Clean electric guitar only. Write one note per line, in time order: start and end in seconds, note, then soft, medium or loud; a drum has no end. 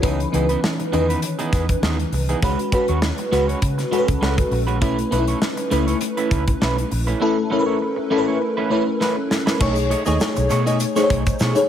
0.03 0.18 E3 medium
0.03 0.19 B3 medium
0.03 0.19 D#4 medium
0.03 0.19 G#4 medium
0.33 0.45 E3 soft
0.33 0.45 B3 medium
0.33 0.45 D#4 soft
0.33 0.46 G#4 medium
0.49 0.60 E3 soft
0.49 0.60 B3 soft
0.49 0.59 D#4 soft
0.49 0.59 B4 medium
0.63 muted clean electric guitar stroke soft
0.79 muted clean electric guitar stroke soft
0.92 1.08 E3 medium
0.92 1.08 B3 medium
0.92 1.08 D#4 medium
0.92 1.08 G#4 medium
1.09 1.20 E3 medium
1.09 1.19 B3 medium
1.09 1.19 D#4 medium
1.09 1.19 B4 medium
1.23 muted clean electric guitar stroke soft
1.39 1.52 E3 medium
1.39 1.52 B3 medium
1.39 1.52 D#4 medium
1.39 1.52 G#4 medium
1.53 1.65 E3 medium
1.53 1.65 B3 medium
1.53 1.65 D#4 medium
1.53 1.65 G#4 medium
1.69 muted clean electric guitar stroke soft
1.83 1.98 E3 medium
1.83 1.98 B3 medium
1.83 1.98 D#4 medium
1.83 1.98 G#4 medium
1.99 muted clean electric guitar stroke soft
2.14 muted clean electric guitar stroke soft
2.29 2.40 E3 soft
2.29 2.40 B3 soft
2.29 2.39 D#4 medium
2.29 2.39 G#4 soft
2.43 2.58 G#3 medium
2.43 2.58 C#4 medium
2.43 2.58 F#4 medium
2.43 2.58 B4 medium
2.73 2.84 G#3 medium
2.73 2.85 C#4 medium
2.73 2.85 F#4 medium
2.73 2.85 B4 medium
2.89 2.99 G#3 soft
2.89 2.99 C#4 medium
2.89 2.99 F#4 medium
2.89 2.99 C#5 medium
3.19 muted clean electric guitar stroke soft
3.32 3.47 G#3 medium
3.32 3.47 C#4 medium
3.32 3.48 F#4 medium
3.32 3.47 B4 medium
3.48 3.59 G#3 medium
3.48 3.59 C#4 medium
3.48 3.59 F#4 medium
3.48 3.58 C#5 medium
3.62 muted clean electric guitar stroke soft
3.78 muted clean electric guitar stroke soft
3.91 4.07 G#3 medium
3.91 4.07 C#4 medium
3.91 4.07 F#4 medium
3.91 4.07 B4 medium
4.08 muted clean electric guitar stroke soft
4.21 4.37 G#3 medium
4.21 4.37 C#4 medium
4.21 4.37 F#4 medium
4.21 4.36 B4 medium
4.37 muted clean electric guitar stroke soft
4.51 muted clean electric guitar stroke soft
4.67 4.78 G#3 soft
4.67 4.78 C#4 soft
4.67 4.78 F#4 soft
4.67 4.78 B4 medium
4.81 4.97 A3 medium
4.81 4.97 C#4 medium
4.81 4.97 E4 medium
4.81 4.97 B4 medium
5.11 5.23 A3 soft
5.11 5.24 C#4 medium
5.11 5.24 E4 soft
5.11 5.24 B4 medium
5.28 5.39 A3 soft
5.28 5.39 C#4 soft
5.28 5.38 E4 soft
5.28 5.38 C#5 soft
5.42 muted clean electric guitar stroke soft
5.57 muted clean electric guitar stroke soft
5.70 5.86 A3 medium
5.70 5.87 C#4 medium
5.70 5.86 E4 medium
5.70 5.86 B4 medium
5.87 5.98 A3 soft
5.87 5.98 C#4 medium
5.87 5.98 E4 medium
5.87 5.97 C#5 medium
6.01 muted clean electric guitar stroke soft
6.17 6.30 A3 medium
6.17 6.30 C#4 medium
6.17 6.31 E4 medium
6.17 6.30 B4 medium
6.31 6.43 A3 soft
6.31 6.43 C#4 medium
6.31 6.44 E4 medium
6.31 6.44 B4 medium
6.49 muted clean electric guitar stroke soft
6.61 6.77 A3 medium
6.61 6.77 C#4 medium
6.61 6.77 E4 medium
6.61 6.77 B4 medium
6.78 muted clean electric guitar stroke soft
6.91 muted clean electric guitar stroke soft
7.07 7.18 A3 soft
7.07 7.18 C#4 soft
7.07 7.18 E4 medium
7.07 7.17 B4 medium
7.20 7.36 A3 medium
7.20 7.36 C#4 medium
7.20 7.37 E4 medium
7.20 7.37 B4 medium
7.50 7.63 A3 medium
7.50 7.63 C#4 medium
7.50 7.63 E4 medium
7.50 7.63 B4 medium
7.66 7.78 A3 soft
7.66 7.78 C#4 soft
7.66 7.77 E4 soft
7.66 7.77 C#5 medium
7.81 muted clean electric guitar stroke soft
7.96 muted clean electric guitar stroke soft
8.10 8.26 A3 medium
8.10 8.26 C#4 medium
8.10 8.26 E4 medium
8.10 8.27 B4 medium
8.27 8.38 A3 soft
8.27 8.38 C#4 medium
8.27 8.38 E4 medium
8.27 8.37 C#5 medium
8.41 muted clean electric guitar stroke soft
8.57 8.69 A3 medium
8.57 8.70 C#4 medium
8.57 8.70 E4 medium
8.57 8.70 B4 medium
8.71 8.83 A3 medium
8.71 8.83 C#4 medium
8.71 8.83 E4 medium
8.71 8.83 B4 medium
8.87 muted clean electric guitar stroke soft
9.00 9.16 A3 medium
9.00 9.16 C#4 medium
9.00 9.16 E4 medium
9.00 9.16 B4 medium
9.17 muted clean electric guitar stroke soft
9.31 muted clean electric guitar stroke soft
9.46 9.57 A3 soft
9.46 9.57 C#4 soft
9.46 9.57 E4 medium
9.46 9.57 B4 medium
9.59 9.75 A3 medium
9.59 9.76 D#4 medium
9.59 9.76 G#4 medium
9.59 9.76 C#5 medium
9.89 10.02 A3 medium
9.89 10.02 D#4 soft
9.89 10.03 G#4 medium
9.89 10.03 C#5 medium
10.06 10.17 A3 soft
10.06 10.17 D#4 soft
10.06 10.17 G#4 medium
10.06 10.16 D#5 medium
10.20 muted clean electric guitar stroke soft
10.37 muted clean electric guitar stroke medium
10.50 10.65 A3 medium
10.50 10.66 D#4 medium
10.50 10.66 G#4 medium
10.50 10.66 C#5 medium
10.67 10.78 A3 medium
10.67 10.77 D#4 medium
10.67 10.77 G#4 medium
10.67 10.77 D#5 medium
10.81 muted clean electric guitar stroke soft
10.96 11.09 A3 medium
10.96 11.09 D#4 medium
10.96 11.10 G#4 medium
10.96 11.09 C#5 medium
11.10 11.22 A3 medium
11.10 11.22 D#4 medium
11.10 11.23 G#4 medium
11.10 11.23 C#5 medium
11.27 muted clean electric guitar stroke soft
11.40 11.55 A3 medium
11.40 11.56 D#4 medium
11.40 11.56 G#4 medium
11.40 11.55 C#5 medium
11.57 muted clean electric guitar stroke soft